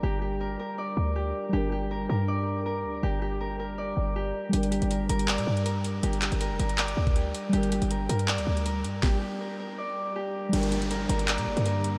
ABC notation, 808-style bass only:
X:1
M:4/4
L:1/16
Q:1/4=160
K:Gm
V:1 name="808-style bass" clef=bass
G,,,6 z4 D,,4 z2 | G,,,6 G,,8 D,,2 | G,,,8- G,,,2 G,,,4 z2 | G,,,3 G,,,3 G,,,3 B,, G,,6 |
G,,,3 G,,,2 F,,, G,,,4 D,,4 z2 | G,,,3 G,,,3 G,,3 D,, D,,4 G,,2 | z16 | G,,,6 G,,,3 B,, G,,, G,,4- G,, |]